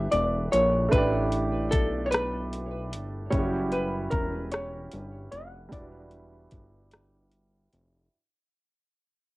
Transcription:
0.00 0.86 A3 medium
0.00 0.88 D4 soft
0.00 0.89 E4 soft
0.00 0.90 G4 medium
0.00 0.91 B4 medium
0.00 0.14 E5 medium
0.12 0.49 E1 medium
0.12 0.52 D5 medium
0.12 closed hi-hat soft
0.52 0.89 A#1 medium
0.52 0.91 C#5 medium
0.52 closed hi-hat medium
0.89 3.26 A3 medium
0.89 3.28 D4 soft
0.89 1.74 B4 medium
0.89 kick medium
0.89 closed hi-hat medium
0.93 1.75 A1 loud
0.93 3.29 E4 soft
0.93 3.30 G4 medium
0.98 3.31 D5 medium
1.32 closed hi-hat soft
1.71 2.95 B1 medium
1.71 2.05 A4 medium
1.71 kick medium
1.71 closed hi-hat medium
2.06 2.10 C#5 medium
2.11 3.30 B4 medium
2.11 cross-stick loud
2.11 closed hi-hat medium
2.53 closed hi-hat soft
2.93 3.29 G1 medium
2.93 closed hi-hat medium
3.30 4.09 F#1 loud
3.30 5.67 G3 medium
3.30 5.68 C#4 soft
3.30 5.69 E4 soft
3.30 3.72 C#5 medium
3.30 kick medium
3.30 closed hi-hat medium
3.37 5.70 F#4 soft
3.37 5.72 G4 medium
3.72 4.13 B4 medium
3.72 closed hi-hat soft
4.11 4.88 E1 medium
4.11 4.48 A#4 medium
4.11 kick medium
4.11 closed hi-hat medium
4.52 5.34 C#5 medium
4.52 cross-stick medium
4.52 closed hi-hat medium
4.92 5.29 G1 medium
4.92 closed hi-hat soft
5.32 5.68 F1 medium
5.32 5.73 F#5 medium
5.32 closed hi-hat medium
5.69 8.06 G3 medium
5.69 8.08 D4 soft
5.69 7.28 D5 medium
5.69 kick medium
5.69 closed hi-hat medium
5.73 6.49 E1 medium
5.73 8.08 E4 soft
5.73 8.10 F#4 soft
5.78 8.11 B4 medium
6.11 closed hi-hat soft
6.51 7.68 G1 medium
6.51 kick medium
6.51 closed hi-hat medium
6.91 cross-stick medium
6.91 closed hi-hat medium
7.31 closed hi-hat soft
7.73 8.09 F1 medium
7.73 closed hi-hat medium

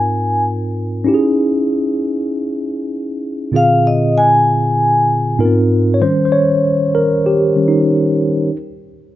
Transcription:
0.00 1.02 G#2 medium
0.00 1.02 C4 medium
0.00 1.03 D#4 medium
0.00 1.03 F4 medium
0.00 1.04 A#4 medium
0.00 0.41 G#5 medium
1.04 3.49 C#4 medium
1.04 3.50 D#4 medium
1.04 3.50 E4 medium
1.04 1.14 G4 medium
1.14 3.54 G#4 medium
3.52 5.35 A#2 medium
3.52 5.36 D3 medium
3.52 5.35 C4 medium
3.52 5.36 F4 medium
3.52 5.37 G#4 medium
3.56 3.87 F5 medium
3.87 4.18 D#5 medium
4.18 5.37 G#5 medium
5.39 6.01 G#2 medium
5.39 5.46 B3 medium
5.39 6.01 D#4 medium
5.39 6.02 F4 medium
5.39 6.02 A#4 medium
5.45 6.04 C4 medium
5.94 6.01 C#5 medium
6.01 6.43 D#3 medium
6.01 6.43 G3 soft
6.01 6.43 C#4 medium
6.01 6.24 C5 loud
6.25 6.32 C5 medium
6.32 6.96 C#5 loud
6.95 7.26 A#4 medium
7.26 7.68 G4 medium
7.56 7.84 D#3 soft
7.56 7.84 G3 soft
7.56 7.84 C#4 soft
7.68 8.56 D#4 medium

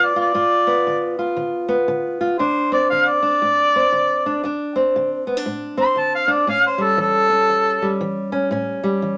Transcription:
0.00 0.31 D3 medium
0.00 0.33 B3 medium
0.00 0.15 F4 medium
0.04 0.19 D5 medium
0.16 0.33 F4 medium
0.20 1.18 D5 medium
0.34 0.82 G2 medium
0.34 1.17 F4 medium
0.67 1.67 B3 medium
0.87 1.33 D3 medium
1.19 2.19 F4 medium
1.37 1.84 D3 medium
1.68 2.37 B3 medium
1.88 2.35 D3 medium
2.21 2.37 F4 medium
2.39 2.86 D2 medium
2.39 3.22 D4 medium
2.39 2.72 C5 medium
2.72 3.73 C4 medium
2.72 2.89 D5 medium
2.90 3.38 D3 medium
2.90 3.10 F5 medium
3.08 4.56 D5 loud
3.23 4.24 D4 medium
3.42 3.88 A2 medium
3.76 4.42 C4 medium
3.92 4.39 D3 medium
4.26 4.42 D4 medium
4.44 4.90 D2 medium
4.44 5.26 D4 medium
4.76 5.76 C4 medium
4.96 5.42 D3 medium
5.27 5.37 B3 medium
5.37 6.26 D4 medium
5.46 5.93 A2 medium
5.77 6.45 C4 medium
5.77 6.01 C6 medium
5.96 6.43 D3 medium
5.96 6.14 A5 medium
6.15 6.33 F5 medium
6.28 6.45 D4 medium
6.32 6.47 D5 medium
6.47 6.94 A2 medium
6.47 7.29 C#4 medium
6.47 6.65 F5 medium
6.67 6.85 C5 medium
6.78 7.80 G3 medium
6.83 6.99 A4 medium
6.97 7.45 E3 medium
6.97 7.98 A4 loud
7.30 8.31 C#4 medium
7.49 7.96 E2 medium
7.82 8.82 G3 medium
8.01 8.48 E3 medium
8.32 8.49 C#4 medium
8.51 8.98 A2 medium
8.51 9.18 C#4 medium
8.84 9.18 G3 medium
9.02 9.18 E3 medium

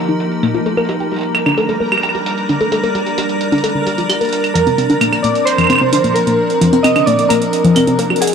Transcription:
0.00 0.66 F3 medium
0.00 5.27 A#3 medium
0.00 0.66 D#4 medium
0.00 1.72 G4 medium
0.00 8.35 A#4 medium
0.00 0.66 D#5 medium
0.00 8.35 A#5 medium
0.00 closed hi-hat medium
0.04 closed hi-hat soft
0.06 0.20 D#4 medium
0.06 closed hi-hat soft
0.09 closed hi-hat soft
0.20 closed hi-hat medium
0.32 closed hi-hat soft
0.43 0.51 A#3 loud
0.43 closed hi-hat loud
0.43 claves soft
0.54 0.65 F4 medium
0.54 closed hi-hat soft
0.66 4.32 G3 medium
0.66 0.77 A4 medium
0.66 closed hi-hat medium
0.77 0.82 A#4 loud
0.77 closed hi-hat soft
0.77 claves soft
0.85 1.00 G4 medium
0.85 closed hi-hat soft
0.89 closed hi-hat medium
0.93 closed hi-hat soft
0.98 7.99 D4 medium
0.98 1.09 G5 medium
0.98 closed hi-hat soft
1.11 1.23 G4 medium
1.11 8.35 A#4 medium
1.11 closed hi-hat soft
1.14 closed hi-hat soft
1.16 closed hi-hat soft
1.19 closed hi-hat soft
1.21 closed hi-hat medium
1.23 closed hi-hat soft
1.29 7.99 D5 medium
1.35 closed hi-hat medium
1.35 claves medium
1.46 1.54 D4 loud
1.46 closed hi-hat soft
1.46 claves medium
1.49 claves soft
1.52 claves soft
1.55 1.68 A4 loud
1.55 closed hi-hat medium
1.55 claves soft
1.60 claves soft
1.63 claves soft
1.66 1.80 A4 medium
1.66 closed hi-hat soft
1.66 claves soft
1.80 1.85 A#4 medium
1.92 2.03 G4 medium
1.92 closed hi-hat soft
1.92 claves medium
1.98 claves medium
2.03 2.12 G5 medium
2.03 closed hi-hat medium
2.03 claves soft
2.09 claves soft
2.15 2.26 G4 medium
2.15 closed hi-hat soft
2.26 closed hi-hat medium
2.38 closed hi-hat soft
2.49 2.57 D4 loud
2.49 closed hi-hat medium
2.61 2.71 A4 loud
2.61 closed hi-hat soft
2.72 2.83 A4 loud
2.72 closed hi-hat medium
2.84 2.88 A#4 loud
2.84 closed hi-hat soft
2.95 3.06 G4 medium
2.95 closed hi-hat medium
3.06 3.15 G5 medium
3.06 closed hi-hat soft
3.18 3.29 G4 medium
3.18 closed hi-hat medium
3.29 closed hi-hat soft
3.41 closed hi-hat medium
3.52 3.60 D4 loud
3.52 closed hi-hat soft
3.58 closed hi-hat soft
3.64 3.72 A4 medium
3.64 closed hi-hat medium
3.69 closed hi-hat soft
3.75 3.80 D4 medium
3.87 3.92 G4 medium
3.87 closed hi-hat medium
3.98 4.03 F4 medium
3.98 closed hi-hat soft
4.09 4.18 G4 medium
4.09 closed hi-hat medium
4.09 claves soft
4.21 4.29 A#4 medium
4.21 closed hi-hat soft
4.25 closed hi-hat soft
4.29 7.99 F3 medium
4.29 closed hi-hat soft
4.33 closed hi-hat medium
4.36 closed hi-hat soft
4.40 closed hi-hat soft
4.44 7.99 C4 medium
4.44 closed hi-hat soft
4.44 claves soft
4.54 4.63 F3 loud
4.54 4.97 A#4 loud
4.54 closed hi-hat medium
4.67 4.77 C4 loud
4.67 closed hi-hat soft
4.78 4.89 C4 loud
4.78 closed hi-hat medium
4.90 4.95 D4 loud
4.90 closed hi-hat soft
5.01 5.12 A#3 medium
5.01 closed hi-hat medium
5.01 claves medium
5.13 5.21 A#4 medium
5.13 closed hi-hat soft
5.13 claves medium
5.23 5.35 A#3 medium
5.23 5.45 D5 medium
5.23 closed hi-hat medium
5.35 closed hi-hat soft
5.45 6.17 C5 loud
5.45 closed hi-hat medium
5.58 5.67 F3 medium
5.58 closed hi-hat soft
5.58 claves soft
5.61 claves soft
5.64 claves soft
5.67 5.80 C4 loud
5.67 closed hi-hat medium
5.67 claves soft
5.70 claves soft
5.73 claves medium
5.76 claves medium
5.78 5.92 C4 loud
5.78 claves medium
5.93 5.98 D4 loud
5.93 closed hi-hat medium
6.04 6.15 A#3 medium
6.04 closed hi-hat soft
6.14 6.86 A#4 loud
6.14 6.24 A#4 medium
6.14 closed hi-hat medium
6.27 6.38 A#3 medium
6.27 closed hi-hat soft
6.50 closed hi-hat soft
6.61 6.70 F3 loud
6.61 closed hi-hat medium
6.73 6.83 C4 medium
6.73 closed hi-hat soft
6.83 6.95 C4 loud
6.83 6.99 D#5 loud
6.83 closed hi-hat medium
6.83 claves medium
6.96 7.01 D4 loud
6.96 closed hi-hat soft
6.96 claves medium
7.00 7.07 D#5 medium
7.06 7.18 A#3 medium
7.06 7.30 D5 loud
7.06 closed hi-hat medium
7.19 7.27 A#4 medium
7.19 closed hi-hat soft
7.29 7.41 A#3 medium
7.29 7.73 A#4 loud
7.29 closed hi-hat medium
7.29 claves soft
7.42 closed hi-hat soft
7.53 closed hi-hat medium
7.64 7.73 F3 loud
7.64 closed hi-hat soft
7.75 7.86 C4 loud
7.75 8.22 A#4 medium
7.75 closed hi-hat medium
7.75 claves soft
7.87 7.98 C4 loud
7.87 closed hi-hat soft
7.99 8.35 F#3 medium
7.99 8.04 A#4 loud
7.99 closed hi-hat medium
8.04 8.35 G#3 medium
8.10 8.21 F#4 medium
8.10 claves soft
8.16 closed hi-hat soft
8.20 8.35 G#4 medium
8.20 8.30 F#5 medium
8.20 closed hi-hat medium
8.27 closed hi-hat medium

